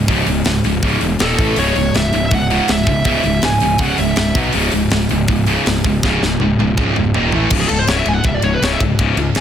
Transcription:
0.08 picked electric bass C#1, distorted electric guitar C#2 G#2 C#3, kick, open hi-hat
0.26 picked electric bass C#1, distorted electric guitar C#2 G#2, open hi-hat
0.45 picked electric bass C#1, distorted electric guitar C#2 G#2, snare, open hi-hat
0.64 picked electric bass C#1, distorted electric guitar C#2 G#2, open hi-hat
0.82 picked electric bass C#1, distorted electric guitar C#2 G#2 C#3, kick, open hi-hat
1.01 picked electric bass E1, distorted electric guitar C#2 G#2, open hi-hat
1.19 picked electric bass D#1, distorted electric guitar D#2 A#2 D#3, lead electric guitar A4, snare, open hi-hat
1.38 picked electric bass A1, distorted electric guitar A2 E3 A3, kick, open hi-hat
1.56 picked electric bass C#1, distorted electric guitar C#2 G#2 C#3, lead electric guitar C#5, open hi-hat
1.76 picked electric bass C#1, distorted electric guitar C#2 G#2, open hi-hat
1.94 picked electric bass C#1, distorted electric guitar C#2 G#2, lead electric guitar E5, snare, open hi-hat
2.13 picked electric bass C#1, distorted electric guitar C#2 G#2, open hi-hat
2.26 lead electric guitar E5
2.31 picked electric bass C#1, distorted electric guitar C#2 G#2, lead electric guitar F#5, kick, open hi-hat
2.50 distorted electric guitar C#2 G#2 C#3, open hi-hat
2.68 picked electric bass C#1, distorted electric guitar C#2 G#2, lead electric guitar E5, snare, open hi-hat
2.86 picked electric bass C#1, distorted electric guitar C#2 G#2, kick, open hi-hat
3.04 picked electric bass C#1, distorted electric guitar C#2 G#2 C#3, lead electric guitar E5, kick, open hi-hat
3.23 picked electric bass C#1, distorted electric guitar C#2 G#2, open hi-hat
3.42 picked electric bass C#1, distorted electric guitar C#2 G#2, lead electric guitar G#5, snare, open hi-hat
3.60 picked electric bass C#1, distorted electric guitar C#2 G#2, open hi-hat
3.78 picked electric bass C#1, distorted electric guitar C#2 G#2 C#3, lead electric guitar F#5, kick, open hi-hat
3.98 picked electric bass C#1, distorted electric guitar C#2 G#2, lead electric guitar E5, open hi-hat
4.16 picked electric bass C#1, distorted electric guitar C#2 G#2, snare, open hi-hat
4.35 picked electric bass B1, distorted electric guitar B2 F#3 B3, kick, open hi-hat
4.52 picked electric bass C#1, distorted electric guitar C#2 G#2 C#3, open hi-hat
4.71 picked electric bass C#1, distorted electric guitar C#2 G#2, open hi-hat
4.90 picked electric bass C#1, distorted electric guitar C#2 G#2, snare, open hi-hat
5.09 picked electric bass C#1, distorted electric guitar C#2 G#2, open hi-hat
5.28 picked electric bass C#1, distorted electric guitar C#2 G#2, kick, open hi-hat
5.46 distorted electric guitar C#2 G#2 C#3, open hi-hat
5.66 picked electric bass C#1, distorted electric guitar C#2 G#2, snare, open hi-hat
5.84 picked electric bass C#1, distorted electric guitar C#2 G#2, kick, open hi-hat
6.03 picked electric bass C#1, distorted electric guitar C#2 G#2 C#3, kick, snare
6.22 picked electric bass C#1, distorted electric guitar C#2 G#2, snare
6.40 picked electric bass C#1, distorted electric guitar C#2 G#2, high tom
6.59 picked electric bass C#1, distorted electric guitar C#2 G#2, high tom
6.77 picked electric bass C#1, distorted electric guitar C#2 G#2 C#3, kick, mid tom
6.96 picked electric bass C#1, distorted electric guitar C#2 G#2, mid tom
7.14 picked electric bass D#1, distorted electric guitar D#2 A#2 D#3, floor tom
7.32 picked electric bass A1, distorted electric guitar A2 E3 A3, floor tom
7.50 picked electric bass C#1, distorted electric guitar C#2 G#2 C#3, kick, crash
7.60 lead electric guitar G#4
7.68 picked electric bass C#1, distorted electric guitar C#2 G#2, lead electric guitar A4, ride
7.79 lead electric guitar C5
7.87 picked electric bass C#1, distorted electric guitar C#2 G#2 C#3, lead electric guitar C#5, snare, ride
7.97 lead electric guitar E5
8.06 picked electric bass C#1, distorted electric guitar C#2 G#2, lead electric guitar G#5, ride
8.14 lead electric guitar F#5
8.24 picked electric bass C#1, distorted electric guitar C#2 G#2, lead electric guitar E5, kick, ride
8.34 lead electric guitar D5
8.42 picked electric bass C#1, distorted electric guitar C#2 G#2, lead electric guitar C#5, ride
8.54 lead electric guitar B4
8.62 picked electric bass C#1, distorted electric guitar C#2 G#2 C#3, lead electric guitar C#5, snare, ride
8.72 lead electric guitar E5
8.80 picked electric bass C#1, distorted electric guitar C#2 G#2, kick, ride
8.99 picked electric bass C#1, distorted electric guitar C#2 G#2 C#3, kick, ride
9.17 picked electric bass C#2, distorted electric guitar C#2 G#2, ride
9.35 picked electric bass C#1, distorted electric guitar C#2 G#2 C#3, snare, ride

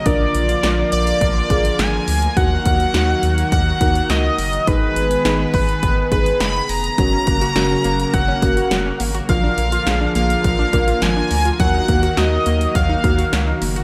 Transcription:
Already playing: analog synth pad A#3 A#4
0.06 analog synth bass A#1, analog synth pad D3 F3 F4, synth keys D4 F4 A#4, analog synth lead D5, kick, closed hi-hat
0.35 analog synth bass A#1, closed hi-hat
0.49 closed hi-hat
0.63 analog synth bass A#1, synth keys D4 F4 A#4, snare, closed hi-hat
0.92 analog synth bass A#1, analog synth lead D5, closed hi-hat
1.07 closed hi-hat
1.21 analog synth bass A#1, kick, closed hi-hat
1.50 analog synth bass A#1, synth keys D4 F4 G#4, kick, closed hi-hat
1.65 closed hi-hat
1.79 analog synth bass G#1, analog synth lead G#5, snare, closed hi-hat
2.08 analog synth bass D2, open hi-hat
2.22 closed hi-hat
2.37 analog synth bass D#2, analog synth pad D#3 F#3 F#4, synth keys D#4 F#4 A#4, analog synth lead F#5, kick, closed hi-hat
2.66 analog synth bass D#2, kick, closed hi-hat
2.80 closed hi-hat
2.94 analog synth bass D#2, synth keys D#4 F#4 A#4, snare, closed hi-hat
3.23 analog synth bass D#2, closed hi-hat
3.38 closed hi-hat
3.52 analog synth bass D#2, analog synth lead F#5, kick, closed hi-hat
3.81 analog synth bass D#2, synth keys D#4 F#4 A#4, kick, closed hi-hat
3.95 closed hi-hat
4.10 analog synth bass C#2, analog synth lead D#5, snare, closed hi-hat
4.38 analog synth bass F#1, open hi-hat
4.53 closed hi-hat
4.67 analog synth bass G#1, analog synth pad G#3 B3 G#4 B4, synth keys D#4 G#4 B4, analog synth lead B4, kick, closed hi-hat
4.96 analog synth bass G#1, closed hi-hat
5.11 closed hi-hat
5.25 analog synth bass G#1, synth keys D#4 G#4 B4, snare, closed hi-hat
5.54 analog synth bass G#1, analog synth lead B4, kick, open hi-hat
5.69 closed hi-hat
5.83 analog synth bass G#1, kick, closed hi-hat
6.12 analog synth bass G#1, synth keys D#4 G#4 B4, analog synth lead B4, kick, closed hi-hat
6.26 closed hi-hat
6.40 analog synth bass F#1, analog synth lead B5, snare, closed hi-hat
6.69 analog synth bass F1, analog synth lead A#5, open hi-hat
6.84 closed hi-hat
6.98 analog synth bass F#1, analog synth pad C#3 F#3 A#3 F#4 A#4, synth pluck F#3, synth keys C#4 F#4 A#4, kick, closed hi-hat
7.13 synth pluck C#4
7.27 analog synth bass F#1, synth pluck A#3, kick, closed hi-hat
7.41 synth pluck F#4, closed hi-hat
7.56 analog synth bass F#1, synth pluck F#3, synth keys C#4 F#4 A#4, snare, closed hi-hat
7.70 synth pluck C#4
7.84 analog synth bass F#1, synth pluck A#3, closed hi-hat
8.00 closed hi-hat
8.14 analog synth bass F#1, synth pluck F#3, analog synth lead F#5, kick, closed hi-hat
8.28 synth pluck C#4
8.42 analog synth bass F#1, synth pluck A#3, synth keys C#4 F#4 A#4, kick, closed hi-hat
8.57 synth pluck F#4, closed hi-hat
8.71 analog synth bass F1, synth pluck F#3, snare, closed hi-hat
8.86 synth pluck C#4
9.00 analog synth bass G#1, synth pluck A#3, open hi-hat
9.14 synth pluck F#4, closed hi-hat
9.29 analog synth bass A#1, analog synth pad D3 F3 F4, synth pluck F3, synth keys D4 F4 A#4, analog synth lead F5, kick, closed hi-hat
9.44 synth pluck D4
9.58 analog synth bass A#1, synth pluck A#3, closed hi-hat
9.72 synth pluck F4, closed hi-hat
9.87 analog synth bass A#1, synth pluck F3, synth keys D4 F4 G#4, snare, closed hi-hat
10.01 synth pluck D4
10.15 analog synth bass A#1, synth pluck A#3, analog synth lead F5, closed hi-hat
10.30 closed hi-hat
10.44 analog synth bass A#1, synth pluck F3, kick, closed hi-hat
10.59 synth pluck D4
10.73 analog synth bass A#1, synth pluck A#3, synth keys D4 F4 A#4, kick, closed hi-hat
10.88 synth pluck F4, closed hi-hat
11.02 analog synth bass G#1, synth pluck F3, analog synth lead G#5, snare, closed hi-hat
11.16 synth pluck D4
11.31 analog synth bass D2, synth pluck A#3, open hi-hat
11.45 synth pluck F4, closed hi-hat
11.60 analog synth bass D#2, analog synth pad D#3 F#3 F#4, synth pluck F#3, synth keys D#4 F#4 A#4, analog synth lead F#5, kick, closed hi-hat
11.74 synth pluck D#4
11.88 analog synth bass D#2, synth pluck A#3, kick, closed hi-hat
12.03 synth pluck F#4, closed hi-hat
12.17 analog synth bass D#2, synth pluck F#3, synth keys D#4 F#4 A#4, analog synth lead D#5, snare, closed hi-hat
12.32 synth pluck D#4
12.46 analog synth bass D#2, synth pluck A#3, closed hi-hat
12.61 closed hi-hat
12.75 analog synth bass D#2, synth pluck F#3, analog synth lead F5, kick, closed hi-hat
12.89 synth pluck D#4
13.04 analog synth bass D#2, synth pluck A#3, synth keys D#4 F#4 A#4, kick, closed hi-hat
13.18 synth pluck F#4, closed hi-hat
13.33 analog synth bass C#2, synth pluck F#3, snare, closed hi-hat
13.47 synth pluck D#4
13.62 analog synth bass F#1, synth pluck A#3, open hi-hat
13.76 synth pluck F#4, closed hi-hat

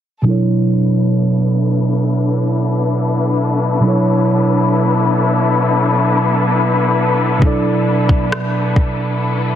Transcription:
0.22 tine electric piano B2 F#3 D4, string section B3 D4 E4 A4 B4
0.27 tine electric piano E4 A4 C#5
3.80 tine electric piano B2 F#3 D4
3.85 tine electric piano E4 A4 C#5
7.38 tine electric piano B2 F#3 D4, kick
7.43 tine electric piano E4 A4 D5
8.09 kick
8.32 cross-stick
8.76 kick

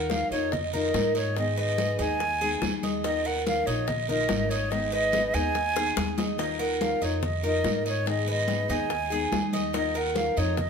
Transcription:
Already playing: upright bass D#2, steel-string acoustic guitar D#3 A#3 D#4 F4 A#4, cuban tres A#4, flute F#5
0.10 steel-string acoustic guitar A#3 D#4 F4 A#4, flute F5, high bongo, high conga, short guiro
0.31 upright bass F2, steel-string acoustic guitar A#3 D#4 F4 A#4, flute C#5, cuban tres D#5, high bongo, high conga, short guiro
0.52 flute D#5, muted steel-string acoustic guitar stroke, high bongo, high conga, low conga, long guiro
0.73 steel-string acoustic guitar A#3 D#4 F4 A#4, cuban tres A#4, flute D#5, high bongo, high conga, low conga
0.94 upright bass G#2, steel-string acoustic guitar A#3 D#4 F4 A#4, high bongo, low bongo, high conga, short guiro
1.15 flute C#5, cuban tres D#5, short guiro
1.36 steel-string acoustic guitar D#3 G#3 B3 D#4 G#4, flute D#5, high bongo, high conga, long guiro
1.57 cuban tres B4, flute D#5, high bongo, high conga
1.78 steel-string acoustic guitar G#3 B3 D#4 G#4, high bongo, high conga, short guiro
1.99 upright bass D#2, steel-string acoustic guitar G#3 B3 D#4 G#4, cuban tres D#4, flute G#5, high conga, short guiro
2.20 muted steel-string acoustic guitar stroke, high bongo, high conga, long guiro
2.41 steel-string acoustic guitar G#3 B3 D#4 G#4, cuban tres G#4, high bongo, high conga
2.62 upright bass D#2, steel-string acoustic guitar G#3 B3 D#4 G#4, high bongo, low bongo, high conga, short guiro
2.83 cuban tres D#5, high bongo, high conga, short guiro
3.04 steel-string acoustic guitar D#3 A#3 D#4 F4 A#4, cuban tres D#4, flute D#5, high bongo, high conga, long guiro
3.25 cuban tres A#4, flute F#5, high bongo, high conga
3.46 steel-string acoustic guitar A#3 D#4 F4 A#4, flute F5, high bongo, high conga, short guiro
3.66 upright bass A#1, steel-string acoustic guitar A#3 D#4 F4 A#4, flute C#5, cuban tres D#5, high bongo, high conga, short guiro
3.87 flute D#5, muted steel-string acoustic guitar stroke, high bongo, high conga, low conga, long guiro
4.08 steel-string acoustic guitar A#3 D#4 F4 A#4, cuban tres A#4, flute D#5, high bongo, high conga, low conga
4.29 upright bass G#1, steel-string acoustic guitar A#3 D#4 F4 A#4, high bongo, low bongo, high conga, short guiro
4.50 flute C#5, cuban tres D#5, high conga, short guiro
4.70 steel-string acoustic guitar D#3 G#3 B3 D#4 G#4, flute D#5, high bongo, high conga, long guiro
4.92 cuban tres B4, flute D#5, high bongo, high conga
5.12 steel-string acoustic guitar G#3 B3 D#4 G#4, high bongo, high conga, short guiro
5.34 upright bass D#2, steel-string acoustic guitar G#3 B3 D#4 G#4, cuban tres D#4, flute G#5, high conga, short guiro
5.55 muted steel-string acoustic guitar stroke, high bongo, high conga, long guiro
5.76 steel-string acoustic guitar G#3 B3 D#4 G#4, cuban tres G#4, high bongo, high conga
5.96 upright bass D#2, steel-string acoustic guitar G#3 B3 D#4 G#4, high bongo, high conga, short guiro
6.18 cuban tres D#5, low bongo, high conga, short guiro
6.38 steel-string acoustic guitar D#3 A#3 D#4 F4 A#4, cuban tres D#4, flute D#5, high bongo, high conga, long guiro
6.59 cuban tres A#4, flute F#5, high bongo, high conga
6.81 steel-string acoustic guitar A#3 D#4 F4 A#4, flute F5, high bongo, high conga, short guiro
7.01 upright bass F2, steel-string acoustic guitar A#3 D#4 F4 A#4, flute C#5, cuban tres D#5, high bongo, high conga, short guiro
7.22 flute D#5, muted steel-string acoustic guitar stroke, high bongo, high conga, low conga, long guiro
7.43 steel-string acoustic guitar A#3 D#4 F4 A#4, cuban tres A#4, flute D#5, high bongo, high conga
7.64 upright bass G#2, steel-string acoustic guitar A#3 D#4 F4 A#4, high bongo, low bongo, high conga, short guiro
7.85 flute C#5, cuban tres D#5, high conga, short guiro
8.06 steel-string acoustic guitar D#3 G#3 B3 D#4 G#4, flute D#5, high bongo, high conga, long guiro
8.27 cuban tres B4, high bongo, high conga
8.31 flute D#5
8.48 steel-string acoustic guitar G#3 B3 D#4 G#4, high bongo, high conga, short guiro
8.68 upright bass D#2, steel-string acoustic guitar G#3 B3 D#4 G#4, cuban tres D#4, flute G#5, high conga, short guiro
8.90 muted steel-string acoustic guitar stroke, high bongo, high conga, long guiro
9.10 steel-string acoustic guitar G#3 B3 D#4 G#4, cuban tres G#4, high bongo, high conga
9.32 upright bass D#2, steel-string acoustic guitar G#3 B3 D#4 G#4, high bongo, low bongo, high conga, short guiro
9.53 cuban tres D#5, high bongo, high conga, short guiro
9.73 steel-string acoustic guitar D#3 A#3 D#4 F4 A#4, cuban tres D#4, flute D#5, high bongo, high conga, long guiro
9.95 cuban tres A#4, flute F#5, high bongo, high conga
10.15 steel-string acoustic guitar A#3 D#4 F4 A#4, flute F5, high bongo, high conga, short guiro
10.37 upright bass F2, steel-string acoustic guitar A#3 D#4 F4 A#4, flute C#5, cuban tres D#5, high bongo, high conga, short guiro
10.57 flute D#5, muted steel-string acoustic guitar stroke, high bongo, high conga, low conga, long guiro

